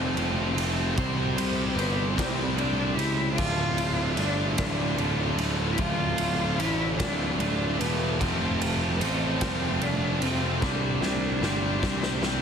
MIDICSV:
0, 0, Header, 1, 6, 480
1, 0, Start_track
1, 0, Key_signature, -1, "minor"
1, 0, Tempo, 804290
1, 583, Time_signature, 6, 3, 24, 8
1, 7411, End_track
2, 0, Start_track
2, 0, Title_t, "Cello"
2, 0, Program_c, 0, 42
2, 0, Note_on_c, 0, 60, 81
2, 323, Note_off_c, 0, 60, 0
2, 576, Note_on_c, 0, 60, 81
2, 1034, Note_off_c, 0, 60, 0
2, 1048, Note_on_c, 0, 59, 87
2, 1265, Note_off_c, 0, 59, 0
2, 1268, Note_on_c, 0, 60, 78
2, 1505, Note_off_c, 0, 60, 0
2, 1514, Note_on_c, 0, 62, 90
2, 1755, Note_on_c, 0, 64, 96
2, 1764, Note_off_c, 0, 62, 0
2, 1985, Note_off_c, 0, 64, 0
2, 1989, Note_on_c, 0, 65, 105
2, 2458, Note_off_c, 0, 65, 0
2, 2484, Note_on_c, 0, 62, 106
2, 2713, Note_off_c, 0, 62, 0
2, 2726, Note_on_c, 0, 62, 86
2, 3187, Note_off_c, 0, 62, 0
2, 3415, Note_on_c, 0, 64, 74
2, 3455, Note_on_c, 0, 65, 98
2, 3464, Note_off_c, 0, 64, 0
2, 3934, Note_on_c, 0, 64, 113
2, 3943, Note_off_c, 0, 65, 0
2, 4161, Note_off_c, 0, 64, 0
2, 4164, Note_on_c, 0, 62, 97
2, 4392, Note_off_c, 0, 62, 0
2, 4399, Note_on_c, 0, 62, 94
2, 4652, Note_on_c, 0, 59, 89
2, 4661, Note_off_c, 0, 62, 0
2, 4882, Note_on_c, 0, 57, 94
2, 4891, Note_off_c, 0, 59, 0
2, 5370, Note_on_c, 0, 60, 101
2, 5379, Note_off_c, 0, 57, 0
2, 5862, Note_on_c, 0, 62, 85
2, 5871, Note_off_c, 0, 60, 0
2, 6100, Note_on_c, 0, 60, 84
2, 6109, Note_off_c, 0, 62, 0
2, 6339, Note_off_c, 0, 60, 0
2, 6345, Note_on_c, 0, 62, 87
2, 7411, Note_off_c, 0, 62, 0
2, 7411, End_track
3, 0, Start_track
3, 0, Title_t, "Overdriven electric guitar"
3, 0, Program_c, 1, 29
3, 0, Note_on_c, 1, 53, 86
3, 0, Note_on_c, 1, 57, 80
3, 0, Note_on_c, 1, 60, 87
3, 0, Note_on_c, 1, 65, 94
3, 83, Note_off_c, 1, 53, 0
3, 91, Note_on_c, 1, 53, 93
3, 93, Note_off_c, 1, 57, 0
3, 100, Note_on_c, 1, 57, 86
3, 102, Note_off_c, 1, 60, 0
3, 104, Note_off_c, 1, 65, 0
3, 109, Note_on_c, 1, 60, 82
3, 111, Note_on_c, 1, 65, 94
3, 325, Note_off_c, 1, 65, 0
3, 331, Note_off_c, 1, 60, 0
3, 332, Note_on_c, 1, 65, 71
3, 338, Note_off_c, 1, 57, 0
3, 338, Note_on_c, 1, 60, 66
3, 345, Note_off_c, 1, 53, 0
3, 345, Note_on_c, 1, 57, 55
3, 352, Note_on_c, 1, 53, 51
3, 563, Note_off_c, 1, 65, 0
3, 566, Note_off_c, 1, 60, 0
3, 567, Note_on_c, 1, 48, 103
3, 569, Note_off_c, 1, 57, 0
3, 573, Note_off_c, 1, 53, 0
3, 578, Note_on_c, 1, 55, 89
3, 578, Note_on_c, 1, 60, 111
3, 585, Note_on_c, 1, 67, 94
3, 589, Note_on_c, 1, 72, 102
3, 808, Note_off_c, 1, 72, 0
3, 815, Note_on_c, 1, 72, 93
3, 816, Note_off_c, 1, 67, 0
3, 822, Note_off_c, 1, 60, 0
3, 823, Note_on_c, 1, 67, 78
3, 827, Note_off_c, 1, 55, 0
3, 829, Note_off_c, 1, 48, 0
3, 829, Note_on_c, 1, 60, 84
3, 834, Note_on_c, 1, 55, 77
3, 836, Note_on_c, 1, 48, 81
3, 1050, Note_off_c, 1, 55, 0
3, 1056, Note_off_c, 1, 60, 0
3, 1057, Note_on_c, 1, 55, 85
3, 1063, Note_on_c, 1, 60, 74
3, 1064, Note_off_c, 1, 67, 0
3, 1070, Note_off_c, 1, 72, 0
3, 1072, Note_on_c, 1, 67, 87
3, 1077, Note_on_c, 1, 72, 85
3, 1307, Note_off_c, 1, 48, 0
3, 1524, Note_off_c, 1, 55, 0
3, 1531, Note_on_c, 1, 55, 78
3, 1534, Note_off_c, 1, 60, 0
3, 1539, Note_off_c, 1, 67, 0
3, 1541, Note_on_c, 1, 60, 89
3, 1546, Note_off_c, 1, 72, 0
3, 1546, Note_on_c, 1, 67, 82
3, 1553, Note_on_c, 1, 72, 95
3, 1768, Note_off_c, 1, 72, 0
3, 1775, Note_on_c, 1, 72, 64
3, 1782, Note_off_c, 1, 67, 0
3, 1787, Note_off_c, 1, 60, 0
3, 1789, Note_on_c, 1, 67, 55
3, 1795, Note_on_c, 1, 60, 59
3, 1999, Note_off_c, 1, 55, 0
3, 2001, Note_off_c, 1, 72, 0
3, 2009, Note_off_c, 1, 67, 0
3, 2011, Note_off_c, 1, 60, 0
3, 2011, Note_on_c, 1, 38, 87
3, 2015, Note_on_c, 1, 45, 104
3, 2024, Note_on_c, 1, 50, 95
3, 2025, Note_on_c, 1, 57, 120
3, 2032, Note_on_c, 1, 65, 108
3, 2247, Note_off_c, 1, 65, 0
3, 2249, Note_on_c, 1, 65, 80
3, 2254, Note_off_c, 1, 57, 0
3, 2256, Note_on_c, 1, 57, 85
3, 2258, Note_off_c, 1, 45, 0
3, 2259, Note_off_c, 1, 50, 0
3, 2261, Note_on_c, 1, 50, 74
3, 2265, Note_on_c, 1, 45, 74
3, 2269, Note_off_c, 1, 38, 0
3, 2271, Note_on_c, 1, 38, 78
3, 2476, Note_off_c, 1, 45, 0
3, 2483, Note_on_c, 1, 45, 83
3, 2489, Note_off_c, 1, 50, 0
3, 2491, Note_on_c, 1, 50, 75
3, 2497, Note_off_c, 1, 57, 0
3, 2499, Note_on_c, 1, 57, 76
3, 2500, Note_off_c, 1, 65, 0
3, 2503, Note_on_c, 1, 65, 101
3, 2950, Note_off_c, 1, 45, 0
3, 2958, Note_on_c, 1, 45, 93
3, 2960, Note_off_c, 1, 50, 0
3, 2967, Note_on_c, 1, 50, 79
3, 2968, Note_off_c, 1, 57, 0
3, 2970, Note_on_c, 1, 57, 90
3, 2976, Note_off_c, 1, 65, 0
3, 2978, Note_on_c, 1, 65, 88
3, 3204, Note_off_c, 1, 65, 0
3, 3206, Note_on_c, 1, 65, 74
3, 3217, Note_off_c, 1, 57, 0
3, 3220, Note_on_c, 1, 57, 63
3, 3221, Note_off_c, 1, 50, 0
3, 3228, Note_on_c, 1, 50, 49
3, 3446, Note_off_c, 1, 45, 0
3, 3447, Note_off_c, 1, 38, 0
3, 3449, Note_on_c, 1, 38, 98
3, 3453, Note_off_c, 1, 50, 0
3, 3455, Note_on_c, 1, 45, 109
3, 3460, Note_off_c, 1, 57, 0
3, 3460, Note_on_c, 1, 50, 107
3, 3462, Note_on_c, 1, 57, 106
3, 3466, Note_off_c, 1, 65, 0
3, 3468, Note_on_c, 1, 65, 113
3, 3690, Note_off_c, 1, 65, 0
3, 3692, Note_on_c, 1, 65, 90
3, 3694, Note_off_c, 1, 50, 0
3, 3694, Note_off_c, 1, 57, 0
3, 3696, Note_on_c, 1, 57, 88
3, 3698, Note_off_c, 1, 45, 0
3, 3701, Note_on_c, 1, 50, 81
3, 3705, Note_off_c, 1, 38, 0
3, 3705, Note_on_c, 1, 45, 69
3, 3712, Note_on_c, 1, 38, 78
3, 3922, Note_off_c, 1, 45, 0
3, 3930, Note_off_c, 1, 50, 0
3, 3930, Note_on_c, 1, 45, 70
3, 3937, Note_on_c, 1, 50, 81
3, 3943, Note_off_c, 1, 57, 0
3, 3946, Note_on_c, 1, 57, 85
3, 3949, Note_off_c, 1, 65, 0
3, 3951, Note_on_c, 1, 65, 106
3, 4183, Note_off_c, 1, 38, 0
3, 4401, Note_off_c, 1, 45, 0
3, 4408, Note_off_c, 1, 50, 0
3, 4408, Note_on_c, 1, 45, 87
3, 4415, Note_on_c, 1, 50, 90
3, 4416, Note_off_c, 1, 57, 0
3, 4419, Note_off_c, 1, 65, 0
3, 4423, Note_on_c, 1, 57, 90
3, 4426, Note_on_c, 1, 65, 102
3, 4641, Note_off_c, 1, 65, 0
3, 4648, Note_on_c, 1, 65, 64
3, 4653, Note_off_c, 1, 57, 0
3, 4658, Note_off_c, 1, 50, 0
3, 4660, Note_on_c, 1, 57, 64
3, 4665, Note_on_c, 1, 50, 55
3, 4877, Note_off_c, 1, 45, 0
3, 4877, Note_off_c, 1, 65, 0
3, 4883, Note_off_c, 1, 57, 0
3, 4885, Note_on_c, 1, 41, 108
3, 4886, Note_off_c, 1, 50, 0
3, 4890, Note_on_c, 1, 48, 109
3, 4893, Note_on_c, 1, 53, 98
3, 4900, Note_on_c, 1, 57, 116
3, 4902, Note_on_c, 1, 60, 105
3, 4905, Note_on_c, 1, 65, 115
3, 5125, Note_off_c, 1, 65, 0
3, 5132, Note_on_c, 1, 65, 84
3, 5133, Note_off_c, 1, 60, 0
3, 5135, Note_off_c, 1, 57, 0
3, 5136, Note_on_c, 1, 60, 79
3, 5138, Note_off_c, 1, 53, 0
3, 5142, Note_off_c, 1, 48, 0
3, 5143, Note_on_c, 1, 57, 86
3, 5145, Note_on_c, 1, 53, 87
3, 5146, Note_off_c, 1, 41, 0
3, 5149, Note_on_c, 1, 48, 78
3, 5153, Note_on_c, 1, 41, 82
3, 5368, Note_off_c, 1, 53, 0
3, 5375, Note_off_c, 1, 57, 0
3, 5375, Note_on_c, 1, 53, 89
3, 5382, Note_on_c, 1, 57, 78
3, 5385, Note_off_c, 1, 60, 0
3, 5387, Note_on_c, 1, 60, 83
3, 5389, Note_off_c, 1, 65, 0
3, 5397, Note_on_c, 1, 65, 92
3, 5623, Note_off_c, 1, 48, 0
3, 5625, Note_off_c, 1, 41, 0
3, 5841, Note_off_c, 1, 53, 0
3, 5848, Note_off_c, 1, 57, 0
3, 5849, Note_on_c, 1, 53, 88
3, 5853, Note_off_c, 1, 60, 0
3, 5855, Note_on_c, 1, 57, 93
3, 5860, Note_on_c, 1, 60, 94
3, 5862, Note_off_c, 1, 65, 0
3, 5869, Note_on_c, 1, 65, 88
3, 6088, Note_off_c, 1, 65, 0
3, 6095, Note_off_c, 1, 60, 0
3, 6095, Note_on_c, 1, 65, 68
3, 6099, Note_off_c, 1, 57, 0
3, 6102, Note_on_c, 1, 60, 64
3, 6107, Note_on_c, 1, 57, 60
3, 6109, Note_off_c, 1, 53, 0
3, 6116, Note_on_c, 1, 53, 51
3, 6322, Note_off_c, 1, 65, 0
3, 6326, Note_off_c, 1, 60, 0
3, 6328, Note_off_c, 1, 57, 0
3, 6332, Note_on_c, 1, 48, 102
3, 6333, Note_off_c, 1, 53, 0
3, 6338, Note_on_c, 1, 55, 90
3, 6345, Note_on_c, 1, 60, 95
3, 6347, Note_on_c, 1, 67, 107
3, 6356, Note_on_c, 1, 72, 108
3, 6561, Note_off_c, 1, 72, 0
3, 6568, Note_off_c, 1, 67, 0
3, 6568, Note_on_c, 1, 72, 90
3, 6573, Note_off_c, 1, 60, 0
3, 6575, Note_on_c, 1, 67, 86
3, 6576, Note_off_c, 1, 55, 0
3, 6579, Note_off_c, 1, 48, 0
3, 6580, Note_on_c, 1, 60, 84
3, 6584, Note_on_c, 1, 55, 75
3, 6586, Note_on_c, 1, 48, 78
3, 6804, Note_off_c, 1, 55, 0
3, 6808, Note_off_c, 1, 60, 0
3, 6811, Note_on_c, 1, 55, 85
3, 6816, Note_on_c, 1, 60, 78
3, 6817, Note_off_c, 1, 67, 0
3, 6824, Note_off_c, 1, 72, 0
3, 6824, Note_on_c, 1, 67, 91
3, 6831, Note_on_c, 1, 72, 102
3, 7064, Note_off_c, 1, 48, 0
3, 7282, Note_off_c, 1, 55, 0
3, 7286, Note_off_c, 1, 60, 0
3, 7289, Note_on_c, 1, 55, 87
3, 7293, Note_on_c, 1, 60, 94
3, 7295, Note_off_c, 1, 67, 0
3, 7300, Note_off_c, 1, 72, 0
3, 7302, Note_on_c, 1, 67, 98
3, 7308, Note_on_c, 1, 72, 101
3, 7411, Note_off_c, 1, 55, 0
3, 7411, Note_off_c, 1, 60, 0
3, 7411, Note_off_c, 1, 67, 0
3, 7411, Note_off_c, 1, 72, 0
3, 7411, End_track
4, 0, Start_track
4, 0, Title_t, "Distorted electric guitar"
4, 0, Program_c, 2, 30
4, 0, Note_on_c, 2, 41, 74
4, 0, Note_on_c, 2, 48, 65
4, 0, Note_on_c, 2, 53, 78
4, 0, Note_on_c, 2, 57, 72
4, 0, Note_on_c, 2, 60, 75
4, 0, Note_on_c, 2, 65, 82
4, 81, Note_off_c, 2, 53, 0
4, 91, Note_off_c, 2, 57, 0
4, 97, Note_off_c, 2, 60, 0
4, 98, Note_off_c, 2, 65, 0
4, 347, Note_off_c, 2, 48, 0
4, 349, Note_off_c, 2, 41, 0
4, 1288, Note_on_c, 2, 72, 82
4, 1297, Note_on_c, 2, 67, 76
4, 1304, Note_on_c, 2, 60, 70
4, 1306, Note_on_c, 2, 55, 78
4, 1312, Note_on_c, 2, 48, 65
4, 1518, Note_off_c, 2, 55, 0
4, 1531, Note_off_c, 2, 60, 0
4, 1537, Note_off_c, 2, 67, 0
4, 1539, Note_off_c, 2, 72, 0
4, 1784, Note_off_c, 2, 48, 0
4, 2730, Note_on_c, 2, 65, 78
4, 2736, Note_on_c, 2, 57, 73
4, 2741, Note_on_c, 2, 50, 74
4, 2742, Note_on_c, 2, 45, 72
4, 2746, Note_on_c, 2, 38, 74
4, 2959, Note_off_c, 2, 45, 0
4, 2967, Note_off_c, 2, 50, 0
4, 2984, Note_off_c, 2, 57, 0
4, 2985, Note_off_c, 2, 65, 0
4, 3220, Note_off_c, 2, 38, 0
4, 4168, Note_on_c, 2, 65, 76
4, 4171, Note_on_c, 2, 57, 80
4, 4178, Note_on_c, 2, 50, 79
4, 4179, Note_on_c, 2, 45, 68
4, 4187, Note_on_c, 2, 38, 78
4, 4401, Note_off_c, 2, 45, 0
4, 4408, Note_off_c, 2, 50, 0
4, 4412, Note_off_c, 2, 57, 0
4, 4419, Note_off_c, 2, 65, 0
4, 4661, Note_off_c, 2, 38, 0
4, 5613, Note_on_c, 2, 65, 88
4, 5615, Note_on_c, 2, 60, 85
4, 5620, Note_on_c, 2, 53, 73
4, 5620, Note_on_c, 2, 57, 79
4, 5625, Note_on_c, 2, 48, 72
4, 5633, Note_on_c, 2, 41, 72
4, 5843, Note_off_c, 2, 53, 0
4, 5853, Note_off_c, 2, 57, 0
4, 5857, Note_off_c, 2, 60, 0
4, 5868, Note_off_c, 2, 65, 0
4, 6102, Note_off_c, 2, 48, 0
4, 6106, Note_off_c, 2, 41, 0
4, 7042, Note_on_c, 2, 72, 98
4, 7051, Note_on_c, 2, 67, 81
4, 7058, Note_on_c, 2, 60, 72
4, 7060, Note_on_c, 2, 55, 73
4, 7063, Note_on_c, 2, 48, 74
4, 7283, Note_off_c, 2, 55, 0
4, 7289, Note_off_c, 2, 60, 0
4, 7295, Note_off_c, 2, 67, 0
4, 7303, Note_off_c, 2, 72, 0
4, 7411, Note_off_c, 2, 48, 0
4, 7411, End_track
5, 0, Start_track
5, 0, Title_t, "Picked electric bass"
5, 0, Program_c, 3, 34
5, 0, Note_on_c, 3, 29, 88
5, 91, Note_off_c, 3, 29, 0
5, 94, Note_on_c, 3, 29, 89
5, 323, Note_off_c, 3, 29, 0
5, 326, Note_on_c, 3, 29, 81
5, 566, Note_off_c, 3, 29, 0
5, 583, Note_on_c, 3, 36, 105
5, 810, Note_off_c, 3, 36, 0
5, 813, Note_on_c, 3, 36, 81
5, 1043, Note_off_c, 3, 36, 0
5, 1047, Note_on_c, 3, 31, 84
5, 1285, Note_off_c, 3, 31, 0
5, 1300, Note_on_c, 3, 36, 85
5, 1526, Note_off_c, 3, 36, 0
5, 1529, Note_on_c, 3, 36, 82
5, 1766, Note_off_c, 3, 36, 0
5, 1772, Note_on_c, 3, 37, 95
5, 2007, Note_off_c, 3, 37, 0
5, 2021, Note_on_c, 3, 26, 119
5, 2483, Note_off_c, 3, 26, 0
5, 2488, Note_on_c, 3, 31, 92
5, 2724, Note_off_c, 3, 31, 0
5, 2735, Note_on_c, 3, 26, 82
5, 2965, Note_off_c, 3, 26, 0
5, 2969, Note_on_c, 3, 26, 96
5, 3204, Note_off_c, 3, 26, 0
5, 3207, Note_on_c, 3, 26, 92
5, 3443, Note_off_c, 3, 26, 0
5, 3450, Note_on_c, 3, 26, 99
5, 3678, Note_off_c, 3, 26, 0
5, 3682, Note_on_c, 3, 26, 81
5, 3920, Note_off_c, 3, 26, 0
5, 3935, Note_on_c, 3, 33, 83
5, 4167, Note_off_c, 3, 33, 0
5, 4176, Note_on_c, 3, 26, 88
5, 4408, Note_off_c, 3, 26, 0
5, 4414, Note_on_c, 3, 26, 98
5, 4647, Note_off_c, 3, 26, 0
5, 4652, Note_on_c, 3, 28, 87
5, 4886, Note_off_c, 3, 28, 0
5, 4900, Note_on_c, 3, 29, 105
5, 5363, Note_off_c, 3, 29, 0
5, 5371, Note_on_c, 3, 33, 90
5, 5606, Note_off_c, 3, 33, 0
5, 5619, Note_on_c, 3, 29, 91
5, 5844, Note_off_c, 3, 29, 0
5, 5847, Note_on_c, 3, 29, 97
5, 6085, Note_off_c, 3, 29, 0
5, 6090, Note_on_c, 3, 29, 87
5, 6326, Note_off_c, 3, 29, 0
5, 6339, Note_on_c, 3, 36, 111
5, 6567, Note_off_c, 3, 36, 0
5, 6571, Note_on_c, 3, 36, 77
5, 6808, Note_off_c, 3, 36, 0
5, 6813, Note_on_c, 3, 31, 82
5, 7049, Note_off_c, 3, 31, 0
5, 7060, Note_on_c, 3, 36, 85
5, 7294, Note_off_c, 3, 36, 0
5, 7298, Note_on_c, 3, 36, 91
5, 7411, Note_off_c, 3, 36, 0
5, 7411, End_track
6, 0, Start_track
6, 0, Title_t, "Drums"
6, 101, Note_on_c, 9, 51, 77
6, 161, Note_off_c, 9, 51, 0
6, 346, Note_on_c, 9, 51, 74
6, 405, Note_off_c, 9, 51, 0
6, 582, Note_on_c, 9, 51, 94
6, 583, Note_on_c, 9, 36, 111
6, 642, Note_off_c, 9, 36, 0
6, 642, Note_off_c, 9, 51, 0
6, 824, Note_on_c, 9, 51, 95
6, 884, Note_off_c, 9, 51, 0
6, 1066, Note_on_c, 9, 51, 76
6, 1126, Note_off_c, 9, 51, 0
6, 1302, Note_on_c, 9, 36, 85
6, 1305, Note_on_c, 9, 51, 109
6, 1309, Note_on_c, 9, 38, 119
6, 1362, Note_off_c, 9, 36, 0
6, 1365, Note_off_c, 9, 51, 0
6, 1369, Note_off_c, 9, 38, 0
6, 1542, Note_on_c, 9, 51, 69
6, 1602, Note_off_c, 9, 51, 0
6, 1783, Note_on_c, 9, 51, 64
6, 1843, Note_off_c, 9, 51, 0
6, 2018, Note_on_c, 9, 49, 98
6, 2020, Note_on_c, 9, 36, 119
6, 2077, Note_off_c, 9, 49, 0
6, 2079, Note_off_c, 9, 36, 0
6, 2255, Note_on_c, 9, 51, 80
6, 2315, Note_off_c, 9, 51, 0
6, 2489, Note_on_c, 9, 51, 74
6, 2548, Note_off_c, 9, 51, 0
6, 2733, Note_on_c, 9, 51, 106
6, 2736, Note_on_c, 9, 36, 88
6, 2737, Note_on_c, 9, 38, 121
6, 2793, Note_off_c, 9, 51, 0
6, 2796, Note_off_c, 9, 36, 0
6, 2796, Note_off_c, 9, 38, 0
6, 2974, Note_on_c, 9, 51, 71
6, 3034, Note_off_c, 9, 51, 0
6, 3214, Note_on_c, 9, 51, 65
6, 3273, Note_off_c, 9, 51, 0
6, 3448, Note_on_c, 9, 51, 93
6, 3454, Note_on_c, 9, 36, 114
6, 3508, Note_off_c, 9, 51, 0
6, 3513, Note_off_c, 9, 36, 0
6, 3688, Note_on_c, 9, 51, 88
6, 3748, Note_off_c, 9, 51, 0
6, 3937, Note_on_c, 9, 51, 77
6, 3996, Note_off_c, 9, 51, 0
6, 4176, Note_on_c, 9, 36, 79
6, 4176, Note_on_c, 9, 51, 110
6, 4180, Note_on_c, 9, 38, 120
6, 4235, Note_off_c, 9, 36, 0
6, 4236, Note_off_c, 9, 51, 0
6, 4239, Note_off_c, 9, 38, 0
6, 4416, Note_on_c, 9, 51, 78
6, 4476, Note_off_c, 9, 51, 0
6, 4659, Note_on_c, 9, 51, 71
6, 4719, Note_off_c, 9, 51, 0
6, 4899, Note_on_c, 9, 36, 115
6, 4900, Note_on_c, 9, 51, 107
6, 4959, Note_off_c, 9, 36, 0
6, 4960, Note_off_c, 9, 51, 0
6, 5142, Note_on_c, 9, 51, 81
6, 5201, Note_off_c, 9, 51, 0
6, 5378, Note_on_c, 9, 51, 90
6, 5438, Note_off_c, 9, 51, 0
6, 5616, Note_on_c, 9, 51, 121
6, 5618, Note_on_c, 9, 36, 85
6, 5620, Note_on_c, 9, 38, 120
6, 5676, Note_off_c, 9, 51, 0
6, 5678, Note_off_c, 9, 36, 0
6, 5679, Note_off_c, 9, 38, 0
6, 5857, Note_on_c, 9, 51, 79
6, 5917, Note_off_c, 9, 51, 0
6, 6098, Note_on_c, 9, 51, 67
6, 6157, Note_off_c, 9, 51, 0
6, 6338, Note_on_c, 9, 38, 54
6, 6340, Note_on_c, 9, 36, 113
6, 6398, Note_off_c, 9, 38, 0
6, 6399, Note_off_c, 9, 36, 0
6, 6580, Note_on_c, 9, 38, 73
6, 6640, Note_off_c, 9, 38, 0
6, 6821, Note_on_c, 9, 38, 88
6, 6881, Note_off_c, 9, 38, 0
6, 7060, Note_on_c, 9, 36, 88
6, 7061, Note_on_c, 9, 38, 89
6, 7119, Note_off_c, 9, 36, 0
6, 7121, Note_off_c, 9, 38, 0
6, 7180, Note_on_c, 9, 38, 83
6, 7240, Note_off_c, 9, 38, 0
6, 7298, Note_on_c, 9, 38, 100
6, 7358, Note_off_c, 9, 38, 0
6, 7411, End_track
0, 0, End_of_file